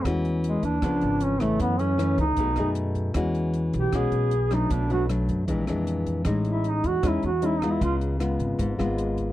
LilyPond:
<<
  \new Staff \with { instrumentName = "Duduk" } { \time 4/4 \key e \major \tempo 4 = 154 r4 gis8 d'4. cis'8 a8 | b8 cis'4 dis'4. r4 | r4. g'8 gis'4. dis'8 | d'8 fis'8 r2. |
r8 e'8 dis'8 fis'8 e'8 fis'8 \tuplet 3/2 { e'8 dis'8 e'8 } | eis'8 r2. r8 | }
  \new Staff \with { instrumentName = "Nylon-string guitar" } { \time 4/4 \key e \major << { <gis cis' fis'>4. r8 <eis b d'>4. <e a cis'>8~ | <e a cis'>8 <e a cis'>8 <e a cis'>8 r8 <a dis' gis'>8 <a dis' gis'>4. | <gis cis' fis'>2 <gis cis' fis'>4 r8 <fis a d'>8~ | <fis a d'>8 <fis a d'>8 <fis a d'>4 <e gis d'>8 <e gis d'>4. |
<gis cis' dis'>2 <gis cis' dis'>8 r8 <gis cis' dis'>8 <gis b f'>8~ | <gis b f'>4 <gis b eis'>4. <gis b eis'>4. | } \\ { e2 cis2 | fis,2 b,2 | e2 b,2 | b,2 ais,2 |
a,2 e2 | cis2 gis,2 | } >> }
  \new Staff \with { instrumentName = "Upright bass" } { \clef bass \time 4/4 \key e \major e,4. dis,8 cis,8 gis,,4. | fis,4. cis,8 b,,8 fis,4. | e,4. b,,8 b,,8 b,,4. | b,,4. fis,8 ais,,8 eis,4. |
a,,4. e,8 e,8 e,4. | cis,4. gis,,8 gis,,8 gis,,4. | }
  \new DrumStaff \with { instrumentName = "Drums" } \drummode { \time 4/4 <hh bd ss>8 hh8 hh8 <hh bd>8 <hh bd ss>8 hh8 hh8 <hh bd ss>8 | <hh bd>8 hh8 <hh ss>8 <hh bd>8 <hh bd>8 <hh ss>8 hh8 <hh bd>8 | <hh bd ss>8 hh8 hh8 <hh bd>8 <hh bd ss>8 hh8 hh8 <hh bd ss>8 | <hh bd>8 hh8 <hh ss>8 <hh bd>8 <hh bd>8 <hh ss>8 hh8 <hh bd>8 |
<hh bd ss>8 hh8 hh8 <hh bd>8 <hh bd ss>8 hh8 hh8 <hh bd ss>8 | <hh bd>8 hh8 <hh ss>8 <hh bd>8 <hh bd>8 <hh ss>8 hh8 <hh bd>8 | }
>>